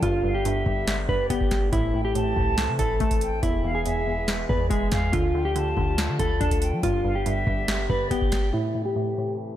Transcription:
Already playing: french horn section D3
0.02 808-style bass G1, synth pluck G2, french horn section G3 B3 G4, clean electric guitar F4, kick, closed hi-hat
0.24 synth pluck G2, flute F5
0.34 clean electric guitar G4
0.45 synth pluck G2, flute E5, closed hi-hat
0.66 808-style bass G1, synth pluck G2, kick
0.87 snare, closed hi-hat
1.09 808-style bass G1, synth pluck G2, clean electric guitar B4, flute D5, kick
1.30 808-style bass G1, synth pluck B3, clean electric guitar G4, kick, closed hi-hat
1.41 kick
1.51 kick, snare, closed hi-hat
1.73 808-style bass A1, synth pluck A2, french horn section E3 A3 C4 A4, clean electric guitar E4, kick, closed hi-hat
1.94 synth pluck A2, flute G5
2.05 clean electric guitar G4
2.15 synth pluck A2, flute A5, closed hi-hat
2.36 808-style bass C2, synth pluck A2, kick
2.58 snare, closed hi-hat
2.68 808-style bass C3
2.79 808-style bass A1, synth pluck A2, clean electric guitar A4, flute B5, kick, closed hi-hat
3.00 808-style bass A1, synth pluck A3, flute A5, kick, closed hi-hat
3.11 kick, closed hi-hat
3.21 flute G5, closed hi-hat
3.43 808-style bass E1, synth pluck E2, french horn section E3 G#3 B3 G#4, clean electric guitar E4, kick, closed hi-hat
3.64 synth pluck E2, flute F5
3.75 clean electric guitar G#4
3.85 synth pluck E2, flute E5, closed hi-hat
4.07 synth pluck E2
4.28 snare, closed hi-hat
4.49 synth pluck E2, 808-style bass E2, clean electric guitar B4, flute D5, kick
4.70 808-style bass E1, synth pluck G#3, clean electric guitar G#4, flute E5, kick, closed hi-hat
4.92 808-style bass E2, flute F5, kick, snare, closed hi-hat
5.13 808-style bass D2, french horn section D3 F3 A3 F4, synth pluck D3, clean electric guitar F4, kick, closed hi-hat
5.34 synth pluck D3, flute G5
5.45 clean electric guitar G4
5.56 synth pluck D3, flute A5, closed hi-hat
5.77 808-style bass D2, synth pluck D3, kick
5.98 snare, closed hi-hat
6.09 808-style bass D3
6.19 808-style bass D2, synth pluck D3, clean electric guitar A4, flute B5, kick, closed hi-hat
6.41 808-style bass D2, synth pluck D4, flute A5, kick, closed hi-hat
6.51 kick, closed hi-hat
6.62 flute G5, closed hi-hat
6.73 808-style bass F3
6.83 808-style bass G1, synth pluck G2, french horn section G3 B3 G4, clean electric guitar F4, kick, closed hi-hat
7.04 synth pluck G2, flute F5
7.15 clean electric guitar G4
7.26 synth pluck G2, flute E5, closed hi-hat
7.47 808-style bass G1, synth pluck G2, kick
7.68 snare, closed hi-hat
7.89 808-style bass G1, synth pluck G2, clean electric guitar B4, flute D5, kick
8.11 808-style bass G1, synth pluck B3, clean electric guitar G4, kick, closed hi-hat
8.22 kick
8.32 kick, snare, closed hi-hat
8.53 synth pluck A2, french horn section C3 E3 A3 E4, clean electric guitar E4
8.75 synth pluck A2
8.85 clean electric guitar G4
8.96 synth pluck A2
9.18 synth pluck A2

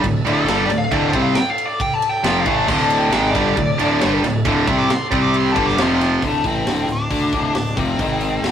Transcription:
Already playing: tonewheel organ D4 A4 E5
0.03 fingered electric bass D1, overdriven electric guitar D2 A2, kick, ride
0.24 fingered electric bass D1, overdriven electric guitar D2 A2 D3, ride
0.33 lead electric guitar A4
0.47 fingered electric bass G1, overdriven electric guitar G2 D3 G3, snare, ride
0.65 lead electric guitar D5
0.70 fingered electric bass D1, overdriven electric guitar D2 A2, ride
0.78 lead electric guitar F5
0.92 fingered electric bass D1, overdriven electric guitar D2 A2 D3, lead electric guitar D5, kick, ride
1.09 lead electric guitar C5
1.13 fingered electric bass C2, overdriven electric guitar C3 G3 C4, kick, ride
1.22 lead electric guitar F5
1.35 lead electric guitar G5, snare, ride
1.50 lead electric guitar F5
1.58 ride
1.66 lead electric guitar D5
1.80 lead electric guitar G5, kick, ride
1.94 lead electric guitar A5
2.02 ride
2.09 lead electric guitar G5
2.24 fingered electric bass F1, overdriven electric guitar F2 C3 F3, lead electric guitar G5, snare, ride
2.40 lead electric guitar F5
2.46 fingered electric bass A1, overdriven electric guitar A2 E3 A3, kick, ride
2.54 lead electric guitar A5
2.68 fingered electric bass D1, overdriven electric guitar D2 A2 D3, lead electric guitar C6, kick, crash
2.83 lead electric guitar A5
2.90 ride
2.98 lead electric guitar G5
3.12 fingered electric bass G#1, overdriven electric guitar G#2 D#3 G#3, lead electric guitar G5, snare, ride
3.30 lead electric guitar D5
3.35 fingered electric bass G1, overdriven electric guitar G2 D3 G3, kick, ride
3.57 fingered electric bass D1, overdriven electric guitar D2 A2, kick, ride
3.79 fingered electric bass D1, overdriven electric guitar D2 A2 D3, ride
4.01 fingered electric bass G1, overdriven electric guitar G2 D3 G3, snare, ride
4.23 fingered electric bass D1, overdriven electric guitar D2 A2, snare, ride
4.45 fingered electric bass D1, overdriven electric guitar D2 A2 D3, kick, ride
4.67 fingered electric bass C2, overdriven electric guitar C3 G3 C4, kick, ride
4.78 lead electric guitar D6
4.90 lead electric guitar C6, snare, ride
5.08 fingered electric bass C2, tonewheel organ C4 G4 D5, kick
5.12 overdriven electric guitar C3 G3 C4, ride
5.22 lead electric guitar D6
5.34 lead electric guitar C6, ride
5.52 lead electric guitar A5
5.56 fingered electric bass G1, overdriven electric guitar G2 D3 G3, tonewheel organ D4 A4 E5, kick, ride
5.67 lead electric guitar D6, snare
5.77 fingered electric bass F1, overdriven electric guitar F2 C3 F3, tonewheel organ F3 C4 G4, snare, ride
5.82 lead electric guitar C6
5.96 lead electric guitar C6
6.01 snare, ride
6.22 fingered electric bass D1, overdriven electric guitar D2 A2 D3, kick, open hi-hat
6.27 lead electric guitar A3
6.44 fingered electric bass A1, overdriven electric guitar A2 E3 A3, lead electric guitar C4, kick, open hi-hat
6.65 fingered electric bass D1, overdriven electric guitar D2 A2 D3, snare, open hi-hat
6.89 fingered electric bass D1, overdriven electric guitar D2 A2, lead electric guitar D4, open hi-hat
7.10 fingered electric bass D2, overdriven electric guitar D3 A3 D4, kick, open hi-hat
7.33 fingered electric bass D1, overdriven electric guitar D2 A2 D3, kick, open hi-hat
7.55 fingered electric bass D1, overdriven electric guitar D2 A2, lead electric guitar D4, snare, open hi-hat
7.77 fingered electric bass F1, overdriven electric guitar F2 C3 F3, lead electric guitar C4, kick, open hi-hat
7.99 fingered electric bass G#1, overdriven electric guitar G#2 D#3 G#3, kick, open hi-hat
8.21 open hi-hat
8.42 fingered electric bass D1, overdriven electric guitar D2 A2 D3, snare, open hi-hat

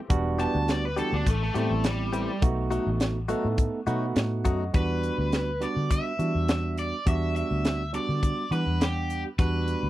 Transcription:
0.10 fingered electric bass E1, tine electric piano G3 B3 D4 F#4, kick, closed hi-hat
0.39 clean electric guitar E3 B3 D4 G4, overdriven electric guitar A5, closed hi-hat
0.55 fingered electric bass D2
0.68 overdriven electric guitar D5, snare, closed hi-hat
0.85 overdriven electric guitar B4
0.96 clean electric guitar E3 B3 D4 G4, tine electric piano G3 B3 D4 F#4, overdriven electric guitar A4, closed hi-hat
1.13 fingered electric bass D2, overdriven electric guitar D4
1.26 fingered electric bass A1, overdriven electric guitar A3, kick, closed hi-hat
1.44 overdriven electric guitar A3
1.54 fingered electric bass A2, clean electric guitar E3 A3 C4 G4, tine electric piano G3 B3 C4 E4, overdriven electric guitar A3, closed hi-hat
1.71 fingered electric bass A1
1.84 overdriven electric guitar G3, snare, closed hi-hat
2.13 clean electric guitar E3 A3 C4 G4, closed hi-hat
2.42 fingered electric bass B1, tine electric piano A3 B3 D#4 F#4, kick, closed hi-hat
2.71 clean electric guitar F#3 A3 D#4 F#4, closed hi-hat
2.87 fingered electric bass A1
3.00 snare, closed hi-hat
3.28 clean electric guitar F#3 A3 D#4 F#4, tine electric piano A3 B3 D#4 A4, closed hi-hat
3.45 fingered electric bass A2
3.58 kick, closed hi-hat
3.86 fingered electric bass B2, clean electric guitar F#3 A3 D#4 F#4, tine electric piano A3 B3 D#4 F#4 B5, closed hi-hat
4.15 fingered electric bass A2, tine electric piano F#5, snare, closed hi-hat
4.45 fingered electric bass F#2, clean electric guitar F#3 A3 D#4 F#4, tine electric piano D#5, kick, closed hi-hat
4.73 fingered electric bass E2, tine electric piano G3 B3 D4 F#4, overdriven electric guitar B4, kick, closed hi-hat
5.03 closed hi-hat
5.18 fingered electric bass D2
5.32 snare, closed hi-hat
5.60 tine electric piano G3 B3 D4 F#4, overdriven electric guitar D5, closed hi-hat
5.77 fingered electric bass D3
5.91 overdriven electric guitar E5, kick, closed hi-hat
6.19 fingered electric bass E3, tine electric piano G3 B3 D4 F#4, closed hi-hat
6.35 fingered electric bass E2
6.48 snare, closed hi-hat
6.78 overdriven electric guitar D5, closed hi-hat
7.06 fingered electric bass E2, tine electric piano G3 B3 D4 F#4, overdriven electric guitar E5, kick, closed hi-hat
7.36 overdriven electric guitar E5, closed hi-hat
7.51 fingered electric bass D2
7.65 snare, closed hi-hat
7.93 tine electric piano G3 B3 D4 F#4, overdriven electric guitar D5, closed hi-hat
8.09 fingered electric bass D3
8.23 kick, closed hi-hat
8.51 fingered electric bass E3, tine electric piano G3 B3 D4 F#5, overdriven electric guitar B4, closed hi-hat
8.66 fingered electric bass E2
8.81 overdriven electric guitar G4, snare, closed hi-hat
9.10 closed hi-hat
9.38 fingered electric bass E2, tine electric piano G3 B3 D4 F#4, overdriven electric guitar B4, kick, closed hi-hat
9.68 closed hi-hat
9.83 fingered electric bass D2

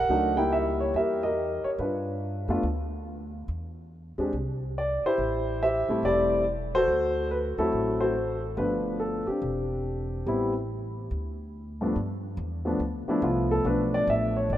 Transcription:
Already playing: upright piano A#4 F#5
0.09 upright bass C#2, upright piano F#3 A3 D4 D#4
0.37 upright piano G3 A#3 D#4 E4 G5
0.53 upright piano E5
0.80 upright piano C#5
0.94 upright bass E2, upright piano G4 A#4 E5
1.23 upright piano G4 A#4 D#5
1.64 upright piano C#5, muted upright bass stroke
1.78 upright bass G2, upright piano D4 F4 B4
2.48 upright bass F2, upright piano A3 B3 D4 F4
2.63 upright bass D2
3.48 upright bass E2
4.18 upright bass D#2, upright piano G#3 C4 D4 G4
4.33 upright bass C2
4.78 upright piano D5
5.03 upright piano E4 G4 C5, muted upright bass stroke
5.18 upright bass A1
5.63 upright piano G4 C5 E5
5.88 upright bass A#1, upright piano G3 A3 C4 E4
6.03 upright bass E1, upright piano G4 D5
6.75 upright piano F#4 A4 C5
6.88 upright bass D2
7.31 upright piano B4
7.58 upright bass D#2, upright piano F#3 A3 C4 E4 F#4 A4
7.72 upright bass A1
8.01 upright piano F#4 A4 C5
8.57 upright bass G1, upright piano F3 A3 B3 D4 F4 B4
9.00 upright piano A4
9.27 upright piano C4 D4 G4, muted upright bass stroke
9.42 upright bass E1
10.26 upright bass A1, upright piano G3 B3 C4 E4
11.11 upright bass D2
11.81 upright piano G2 F3 A3 B3 D4
11.96 upright bass G2
12.37 upright bass E2
12.65 upright piano F3 A3 B3 D4
12.79 upright bass D2
13.07 upright piano F3 A3 B3 D4 E4, muted upright bass stroke
13.22 upright bass C2, upright piano F4
13.51 upright piano A4
13.65 upright bass B1, upright piano F3 A3 B3 D4 B4
13.94 upright piano D5
14.07 upright bass A1, upright piano E5
14.37 upright piano C#5
14.50 upright bass G1, upright piano D5

